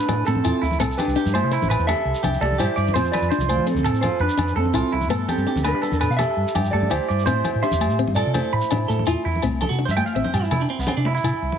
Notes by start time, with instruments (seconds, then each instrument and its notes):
Already playing: clean electric guitar D4 B4
0.09 fingered electric bass A2, steel-string acoustic guitar D4, low conga, low agogo
0.25 fingered electric bass A2, clean electric guitar C4 A4, high conga, shekere
0.35 low conga
0.44 fingered electric bass E2, steel-string acoustic guitar E4, clean electric guitar F4, low conga, low agogo, shekere
0.62 fingered electric bass D2, clean electric guitar E4, shekere
0.71 low conga, shekere
0.80 fingered electric bass C2, steel-string acoustic guitar C4, clean electric guitar A4, high conga, low agogo, shekere
0.91 shekere
0.97 clean electric guitar D4 G4 B4, low conga, low agogo
1.07 fingered electric bass C2, low conga, shekere
1.16 steel-string acoustic guitar D4, clean electric guitar G4, shekere
1.25 fingered electric bass G2, low conga, shekere
1.33 clean electric guitar E4 C5, high conga, low agogo
1.43 fingered electric bass C3
1.52 clean electric guitar E4, muted steel-string acoustic guitar stroke, shekere
1.62 fingered electric bass A1, low conga, shekere
1.70 clean electric guitar B4, low agogo, shekere
1.79 fingered electric bass E2, shekere
1.87 clean electric guitar G4 A4 E5, high conga, low conga, low agogo, shekere
1.99 low conga
2.05 fingered electric bass C2
2.15 low conga, shekere
2.23 fingered electric bass C2, steel-string acoustic guitar D4, clean electric guitar G4, low conga, low agogo
2.34 shekere
2.41 fingered electric bass C2, clean electric guitar G4 A4 D5, high conga
2.52 low conga
2.58 fingered electric bass G2, steel-string acoustic guitar E4, clean electric guitar E4 G4 C5, low agogo, shekere
2.76 fingered electric bass G2, clean electric guitar D5, shekere
2.87 low conga, shekere
2.94 fingered electric bass F2, steel-string acoustic guitar C4, clean electric guitar F4 C5, high conga, low agogo, shekere
3.05 shekere
3.12 clean electric guitar F4 B4 D5, low conga, low agogo
3.22 fingered electric bass F2, low conga, shekere
3.30 steel-string acoustic guitar D4, clean electric guitar C5, shekere
3.38 fingered electric bass C2, low conga, shekere
3.49 clean electric guitar F4 C5, high conga, low agogo
3.57 fingered electric bass F3
3.67 steel-string acoustic guitar C4, clean electric guitar C4 A4, shekere
3.74 fingered electric bass D2, low conga, shekere
3.84 clean electric guitar A4, low agogo, shekere
3.93 fingered electric bass A2, shekere
4.01 clean electric guitar F4 C5, high conga, low conga, low agogo, shekere
4.12 low conga
4.20 fingered electric bass F2, clean electric guitar D4 B4
4.29 low conga, shekere
4.37 fingered electric bass F2, steel-string acoustic guitar D4, low conga, low agogo
4.48 shekere
4.56 fingered electric bass F2, clean electric guitar C4 A4, high conga
4.65 low conga
4.74 fingered electric bass C2, steel-string acoustic guitar E4, clean electric guitar F4, low agogo, shekere
4.92 fingered electric bass C2, clean electric guitar E4, shekere
5.01 low conga, shekere
5.09 fingered electric bass G2, steel-string acoustic guitar B3, clean electric guitar A4, high conga, low agogo, shekere
5.20 shekere
5.28 clean electric guitar C4 G4 A4, low conga, low agogo
5.37 fingered electric bass G2, low conga, shekere
5.47 steel-string acoustic guitar D4, clean electric guitar G4, shekere
5.56 fingered electric bass D2, low conga, shekere
5.64 clean electric guitar D4 B4, high conga, low agogo
5.74 fingered electric bass G3
5.82 steel-string acoustic guitar B3, clean electric guitar A4, shekere
5.92 fingered electric bass E2, low conga, shekere
6.01 clean electric guitar B4, low agogo, shekere
6.10 fingered electric bass B2, clean electric guitar F5, shekere
6.17 clean electric guitar G4 A4 E5, high conga, low conga, low agogo
6.21 shekere
6.28 low conga
6.37 fingered electric bass G2
6.47 low conga, shekere
6.55 fingered electric bass G2, steel-string acoustic guitar D4, clean electric guitar G4, low conga, low agogo
6.65 shekere
6.71 fingered electric bass G2, clean electric guitar G4 A4 D5, high conga
6.82 low conga
6.90 fingered electric bass D2, steel-string acoustic guitar E4, clean electric guitar E4 G4 C5, low agogo
7.08 fingered electric bass G2, clean electric guitar D5, shekere
7.19 shekere
7.26 fingered electric bass A2, steel-string acoustic guitar C4, clean electric guitar E4 C5, high conga, low agogo, shekere
7.44 low conga, low agogo
7.53 fingered electric bass A2, low conga
7.62 steel-string acoustic guitar D4, clean electric guitar G4 C5 E5, shekere
7.71 fingered electric bass E2, low conga, shekere
7.81 high conga, low conga, low agogo, shekere
7.90 fingered electric bass A2, shekere
7.99 steel-string acoustic guitar C4
8.07 fingered electric bass G2, low conga
8.15 clean electric guitar F4 A4 D5, low agogo, shekere
8.25 fingered electric bass C3, shekere
8.34 clean electric guitar E4 C5, high conga, low conga, low agogo, shekere
8.44 low conga, shekere
8.53 fingered electric bass A2, clean electric guitar B5, low conga
8.61 low conga, shekere
8.71 fingered electric bass A2, steel-string acoustic guitar D4, low conga, low agogo
8.88 fingered electric bass A2, clean electric guitar A4, high conga, shekere
8.99 low conga
9.07 fingered electric bass E2, steel-string acoustic guitar E4, clean electric guitar F4, low agogo, shekere
9.18 low conga
9.25 fingered electric bass E2, clean electric guitar E4, low conga
9.35 low conga
9.42 fingered electric bass C2, steel-string acoustic guitar C4, high conga, low conga, low agogo, shekere
9.61 clean electric guitar A4, low conga, low agogo
9.69 fingered electric bass C3, clean electric guitar F#4, low conga, shekere
9.79 steel-string acoustic guitar D4, low conga
9.85 fingered electric bass G2, clean electric guitar C5, low conga, shekere
9.91 clean electric guitar E5
9.97 clean electric guitar G5, high conga, low agogo
10.06 clean electric guitar F5, shekere
10.15 fingered electric bass A1, steel-string acoustic guitar C4, clean electric guitar E5
10.24 clean electric guitar C5, low conga, shekere
10.33 fingered electric bass G2, clean electric guitar G4, low agogo, shekere
10.43 clean electric guitar E4, low conga, shekere
10.51 fingered electric bass C3, clean electric guitar E4, high conga, low conga, low agogo, shekere
10.61 clean electric guitar D4, low conga
10.70 clean electric guitar C4
10.78 fingered electric bass C2, clean electric guitar B3, shekere
10.87 clean electric guitar C4, low conga, low agogo
10.97 fingered electric bass C3, clean electric guitar D4, shekere
11.05 clean electric guitar E4, high conga
11.15 clean electric guitar E4, shekere
11.23 fingered electric bass C3, steel-string acoustic guitar E4, low conga, low agogo, shekere
11.33 low conga
11.42 fingered electric bass C2, low conga
11.52 low conga